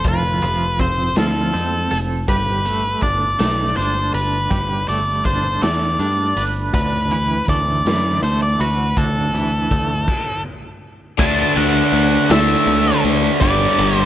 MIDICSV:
0, 0, Header, 1, 7, 480
1, 0, Start_track
1, 0, Tempo, 742574
1, 32, Time_signature, 6, 3, 24, 8
1, 9085, End_track
2, 0, Start_track
2, 0, Title_t, "Lead electric guitar"
2, 0, Program_c, 0, 29
2, 51, Note_on_c, 0, 71, 85
2, 521, Note_off_c, 0, 71, 0
2, 524, Note_on_c, 0, 72, 91
2, 758, Note_off_c, 0, 72, 0
2, 761, Note_on_c, 0, 69, 74
2, 1271, Note_off_c, 0, 69, 0
2, 1481, Note_on_c, 0, 71, 83
2, 1955, Note_off_c, 0, 71, 0
2, 1957, Note_on_c, 0, 74, 97
2, 2433, Note_off_c, 0, 74, 0
2, 2435, Note_on_c, 0, 72, 76
2, 2658, Note_off_c, 0, 72, 0
2, 2678, Note_on_c, 0, 71, 79
2, 3156, Note_off_c, 0, 71, 0
2, 3158, Note_on_c, 0, 74, 85
2, 3380, Note_off_c, 0, 74, 0
2, 3397, Note_on_c, 0, 72, 83
2, 3638, Note_off_c, 0, 72, 0
2, 3640, Note_on_c, 0, 74, 80
2, 4152, Note_off_c, 0, 74, 0
2, 4359, Note_on_c, 0, 71, 83
2, 4812, Note_off_c, 0, 71, 0
2, 4844, Note_on_c, 0, 74, 87
2, 5294, Note_off_c, 0, 74, 0
2, 5319, Note_on_c, 0, 72, 73
2, 5441, Note_off_c, 0, 72, 0
2, 5445, Note_on_c, 0, 74, 73
2, 5560, Note_off_c, 0, 74, 0
2, 5560, Note_on_c, 0, 71, 74
2, 5804, Note_on_c, 0, 69, 68
2, 5805, Note_off_c, 0, 71, 0
2, 6733, Note_off_c, 0, 69, 0
2, 7238, Note_on_c, 0, 81, 112
2, 7477, Note_off_c, 0, 81, 0
2, 7480, Note_on_c, 0, 78, 98
2, 7961, Note_on_c, 0, 76, 78
2, 7970, Note_off_c, 0, 78, 0
2, 8410, Note_off_c, 0, 76, 0
2, 8666, Note_on_c, 0, 74, 90
2, 9034, Note_off_c, 0, 74, 0
2, 9034, Note_on_c, 0, 72, 90
2, 9085, Note_off_c, 0, 72, 0
2, 9085, End_track
3, 0, Start_track
3, 0, Title_t, "Tonewheel organ"
3, 0, Program_c, 1, 16
3, 7235, Note_on_c, 1, 62, 61
3, 7238, Note_on_c, 1, 78, 78
3, 7239, Note_on_c, 1, 50, 68
3, 7241, Note_on_c, 1, 71, 68
3, 8657, Note_off_c, 1, 62, 0
3, 8659, Note_off_c, 1, 50, 0
3, 8659, Note_off_c, 1, 78, 0
3, 8660, Note_off_c, 1, 71, 0
3, 8677, Note_on_c, 1, 74, 62
3, 8678, Note_on_c, 1, 55, 67
3, 8679, Note_on_c, 1, 62, 67
3, 8679, Note_on_c, 1, 79, 78
3, 9085, Note_off_c, 1, 55, 0
3, 9085, Note_off_c, 1, 62, 0
3, 9085, Note_off_c, 1, 74, 0
3, 9085, Note_off_c, 1, 79, 0
3, 9085, End_track
4, 0, Start_track
4, 0, Title_t, "Clean electric guitar"
4, 0, Program_c, 2, 27
4, 0, Note_on_c, 2, 60, 59
4, 0, Note_on_c, 2, 69, 61
4, 29, Note_on_c, 2, 53, 68
4, 266, Note_off_c, 2, 53, 0
4, 274, Note_on_c, 2, 53, 67
4, 506, Note_off_c, 2, 60, 0
4, 514, Note_on_c, 2, 60, 63
4, 744, Note_off_c, 2, 53, 0
4, 752, Note_on_c, 2, 53, 63
4, 984, Note_off_c, 2, 60, 0
4, 992, Note_on_c, 2, 60, 61
4, 1232, Note_off_c, 2, 69, 0
4, 1235, Note_on_c, 2, 69, 60
4, 1471, Note_off_c, 2, 53, 0
4, 1472, Note_off_c, 2, 60, 0
4, 1474, Note_on_c, 2, 55, 64
4, 1493, Note_off_c, 2, 69, 0
4, 1716, Note_on_c, 2, 57, 68
4, 1954, Note_on_c, 2, 62, 57
4, 2189, Note_off_c, 2, 57, 0
4, 2191, Note_on_c, 2, 57, 65
4, 2428, Note_off_c, 2, 62, 0
4, 2430, Note_on_c, 2, 62, 65
4, 2674, Note_off_c, 2, 55, 0
4, 2912, Note_on_c, 2, 55, 71
4, 3151, Note_off_c, 2, 57, 0
4, 3153, Note_on_c, 2, 57, 64
4, 3389, Note_off_c, 2, 62, 0
4, 3392, Note_on_c, 2, 62, 66
4, 3630, Note_off_c, 2, 57, 0
4, 3633, Note_on_c, 2, 57, 66
4, 3872, Note_off_c, 2, 62, 0
4, 3875, Note_on_c, 2, 62, 63
4, 4114, Note_off_c, 2, 55, 0
4, 4117, Note_on_c, 2, 71, 63
4, 4356, Note_off_c, 2, 71, 0
4, 4358, Note_on_c, 2, 50, 68
4, 4599, Note_on_c, 2, 52, 72
4, 4618, Note_off_c, 2, 62, 0
4, 4838, Note_off_c, 2, 57, 0
4, 4841, Note_on_c, 2, 57, 61
4, 5078, Note_off_c, 2, 52, 0
4, 5085, Note_on_c, 2, 52, 65
4, 5320, Note_off_c, 2, 57, 0
4, 5328, Note_on_c, 2, 57, 65
4, 5557, Note_off_c, 2, 50, 0
4, 5564, Note_on_c, 2, 66, 64
4, 5802, Note_on_c, 2, 50, 62
4, 6031, Note_off_c, 2, 52, 0
4, 6039, Note_on_c, 2, 52, 63
4, 6270, Note_off_c, 2, 57, 0
4, 6278, Note_on_c, 2, 57, 64
4, 6517, Note_off_c, 2, 52, 0
4, 6517, Note_off_c, 2, 57, 0
4, 6518, Note_off_c, 2, 50, 0
4, 6520, Note_off_c, 2, 66, 0
4, 9085, End_track
5, 0, Start_track
5, 0, Title_t, "Overdriven electric guitar"
5, 0, Program_c, 3, 29
5, 7225, Note_on_c, 3, 50, 86
5, 7235, Note_on_c, 3, 57, 88
5, 7243, Note_on_c, 3, 62, 95
5, 7934, Note_off_c, 3, 50, 0
5, 7939, Note_off_c, 3, 57, 0
5, 7943, Note_off_c, 3, 62, 0
5, 7945, Note_on_c, 3, 62, 91
5, 7952, Note_on_c, 3, 57, 73
5, 7959, Note_on_c, 3, 50, 72
5, 8656, Note_off_c, 3, 57, 0
5, 8660, Note_off_c, 3, 50, 0
5, 8668, Note_on_c, 3, 43, 92
5, 8674, Note_on_c, 3, 50, 93
5, 8679, Note_on_c, 3, 55, 97
5, 9085, Note_off_c, 3, 43, 0
5, 9085, Note_off_c, 3, 50, 0
5, 9085, Note_off_c, 3, 55, 0
5, 9085, Note_off_c, 3, 62, 0
5, 9085, End_track
6, 0, Start_track
6, 0, Title_t, "Picked electric bass"
6, 0, Program_c, 4, 34
6, 31, Note_on_c, 4, 29, 78
6, 245, Note_off_c, 4, 29, 0
6, 276, Note_on_c, 4, 29, 81
6, 489, Note_off_c, 4, 29, 0
6, 513, Note_on_c, 4, 29, 81
6, 727, Note_off_c, 4, 29, 0
6, 759, Note_on_c, 4, 38, 68
6, 970, Note_off_c, 4, 38, 0
6, 998, Note_on_c, 4, 41, 68
6, 1210, Note_off_c, 4, 41, 0
6, 1238, Note_on_c, 4, 29, 82
6, 1450, Note_off_c, 4, 29, 0
6, 1476, Note_on_c, 4, 31, 80
6, 1903, Note_off_c, 4, 31, 0
6, 1956, Note_on_c, 4, 31, 79
6, 2169, Note_off_c, 4, 31, 0
6, 2199, Note_on_c, 4, 35, 78
6, 2411, Note_off_c, 4, 35, 0
6, 2438, Note_on_c, 4, 31, 76
6, 2650, Note_off_c, 4, 31, 0
6, 2672, Note_on_c, 4, 31, 84
6, 2887, Note_off_c, 4, 31, 0
6, 2914, Note_on_c, 4, 31, 78
6, 3128, Note_off_c, 4, 31, 0
6, 3156, Note_on_c, 4, 31, 67
6, 3369, Note_off_c, 4, 31, 0
6, 3397, Note_on_c, 4, 31, 78
6, 3610, Note_off_c, 4, 31, 0
6, 3636, Note_on_c, 4, 40, 74
6, 3849, Note_off_c, 4, 40, 0
6, 3874, Note_on_c, 4, 43, 79
6, 4089, Note_off_c, 4, 43, 0
6, 4113, Note_on_c, 4, 31, 77
6, 4328, Note_off_c, 4, 31, 0
6, 4356, Note_on_c, 4, 38, 77
6, 4784, Note_off_c, 4, 38, 0
6, 4836, Note_on_c, 4, 38, 81
6, 5050, Note_off_c, 4, 38, 0
6, 5075, Note_on_c, 4, 42, 69
6, 5289, Note_off_c, 4, 42, 0
6, 5317, Note_on_c, 4, 38, 74
6, 5530, Note_off_c, 4, 38, 0
6, 5556, Note_on_c, 4, 38, 83
6, 5770, Note_off_c, 4, 38, 0
6, 5798, Note_on_c, 4, 38, 82
6, 6011, Note_off_c, 4, 38, 0
6, 6034, Note_on_c, 4, 38, 71
6, 6249, Note_off_c, 4, 38, 0
6, 6277, Note_on_c, 4, 38, 75
6, 6490, Note_off_c, 4, 38, 0
6, 7233, Note_on_c, 4, 38, 90
6, 7390, Note_off_c, 4, 38, 0
6, 7476, Note_on_c, 4, 38, 86
6, 7632, Note_off_c, 4, 38, 0
6, 7709, Note_on_c, 4, 38, 83
6, 7867, Note_off_c, 4, 38, 0
6, 7950, Note_on_c, 4, 38, 84
6, 8107, Note_off_c, 4, 38, 0
6, 8188, Note_on_c, 4, 38, 85
6, 8346, Note_off_c, 4, 38, 0
6, 8432, Note_on_c, 4, 38, 89
6, 8588, Note_off_c, 4, 38, 0
6, 8671, Note_on_c, 4, 31, 97
6, 8828, Note_off_c, 4, 31, 0
6, 8910, Note_on_c, 4, 31, 95
6, 9067, Note_off_c, 4, 31, 0
6, 9085, End_track
7, 0, Start_track
7, 0, Title_t, "Drums"
7, 26, Note_on_c, 9, 42, 74
7, 31, Note_on_c, 9, 36, 94
7, 91, Note_off_c, 9, 42, 0
7, 95, Note_off_c, 9, 36, 0
7, 269, Note_on_c, 9, 42, 51
7, 333, Note_off_c, 9, 42, 0
7, 512, Note_on_c, 9, 36, 67
7, 512, Note_on_c, 9, 42, 58
7, 577, Note_off_c, 9, 36, 0
7, 577, Note_off_c, 9, 42, 0
7, 748, Note_on_c, 9, 42, 70
7, 756, Note_on_c, 9, 38, 96
7, 813, Note_off_c, 9, 42, 0
7, 820, Note_off_c, 9, 38, 0
7, 996, Note_on_c, 9, 42, 54
7, 1060, Note_off_c, 9, 42, 0
7, 1234, Note_on_c, 9, 42, 57
7, 1298, Note_off_c, 9, 42, 0
7, 1475, Note_on_c, 9, 36, 90
7, 1477, Note_on_c, 9, 42, 70
7, 1540, Note_off_c, 9, 36, 0
7, 1541, Note_off_c, 9, 42, 0
7, 1717, Note_on_c, 9, 42, 53
7, 1781, Note_off_c, 9, 42, 0
7, 1954, Note_on_c, 9, 36, 72
7, 1956, Note_on_c, 9, 42, 55
7, 2019, Note_off_c, 9, 36, 0
7, 2020, Note_off_c, 9, 42, 0
7, 2193, Note_on_c, 9, 42, 69
7, 2200, Note_on_c, 9, 38, 84
7, 2258, Note_off_c, 9, 42, 0
7, 2265, Note_off_c, 9, 38, 0
7, 2434, Note_on_c, 9, 42, 60
7, 2499, Note_off_c, 9, 42, 0
7, 2677, Note_on_c, 9, 42, 59
7, 2742, Note_off_c, 9, 42, 0
7, 2916, Note_on_c, 9, 36, 88
7, 2918, Note_on_c, 9, 42, 68
7, 2980, Note_off_c, 9, 36, 0
7, 2983, Note_off_c, 9, 42, 0
7, 3159, Note_on_c, 9, 42, 53
7, 3223, Note_off_c, 9, 42, 0
7, 3395, Note_on_c, 9, 36, 70
7, 3396, Note_on_c, 9, 42, 61
7, 3460, Note_off_c, 9, 36, 0
7, 3461, Note_off_c, 9, 42, 0
7, 3637, Note_on_c, 9, 42, 66
7, 3644, Note_on_c, 9, 38, 78
7, 3701, Note_off_c, 9, 42, 0
7, 3708, Note_off_c, 9, 38, 0
7, 3876, Note_on_c, 9, 42, 57
7, 3941, Note_off_c, 9, 42, 0
7, 4115, Note_on_c, 9, 42, 66
7, 4180, Note_off_c, 9, 42, 0
7, 4354, Note_on_c, 9, 42, 73
7, 4356, Note_on_c, 9, 36, 104
7, 4418, Note_off_c, 9, 42, 0
7, 4420, Note_off_c, 9, 36, 0
7, 4594, Note_on_c, 9, 42, 48
7, 4659, Note_off_c, 9, 42, 0
7, 4837, Note_on_c, 9, 36, 67
7, 4838, Note_on_c, 9, 42, 57
7, 4901, Note_off_c, 9, 36, 0
7, 4902, Note_off_c, 9, 42, 0
7, 5081, Note_on_c, 9, 42, 61
7, 5088, Note_on_c, 9, 38, 83
7, 5146, Note_off_c, 9, 42, 0
7, 5153, Note_off_c, 9, 38, 0
7, 5321, Note_on_c, 9, 42, 52
7, 5386, Note_off_c, 9, 42, 0
7, 5564, Note_on_c, 9, 42, 59
7, 5629, Note_off_c, 9, 42, 0
7, 5798, Note_on_c, 9, 36, 95
7, 5801, Note_on_c, 9, 42, 68
7, 5863, Note_off_c, 9, 36, 0
7, 5865, Note_off_c, 9, 42, 0
7, 6043, Note_on_c, 9, 42, 57
7, 6107, Note_off_c, 9, 42, 0
7, 6277, Note_on_c, 9, 36, 76
7, 6278, Note_on_c, 9, 42, 57
7, 6342, Note_off_c, 9, 36, 0
7, 6342, Note_off_c, 9, 42, 0
7, 6515, Note_on_c, 9, 36, 93
7, 6515, Note_on_c, 9, 49, 72
7, 6580, Note_off_c, 9, 36, 0
7, 6580, Note_off_c, 9, 49, 0
7, 7233, Note_on_c, 9, 36, 111
7, 7233, Note_on_c, 9, 49, 112
7, 7298, Note_off_c, 9, 36, 0
7, 7298, Note_off_c, 9, 49, 0
7, 7471, Note_on_c, 9, 51, 70
7, 7535, Note_off_c, 9, 51, 0
7, 7713, Note_on_c, 9, 51, 82
7, 7777, Note_off_c, 9, 51, 0
7, 7951, Note_on_c, 9, 51, 92
7, 7958, Note_on_c, 9, 38, 114
7, 8015, Note_off_c, 9, 51, 0
7, 8023, Note_off_c, 9, 38, 0
7, 8191, Note_on_c, 9, 51, 76
7, 8255, Note_off_c, 9, 51, 0
7, 8434, Note_on_c, 9, 51, 84
7, 8499, Note_off_c, 9, 51, 0
7, 8670, Note_on_c, 9, 51, 103
7, 8671, Note_on_c, 9, 36, 102
7, 8734, Note_off_c, 9, 51, 0
7, 8736, Note_off_c, 9, 36, 0
7, 8911, Note_on_c, 9, 51, 75
7, 8975, Note_off_c, 9, 51, 0
7, 9085, End_track
0, 0, End_of_file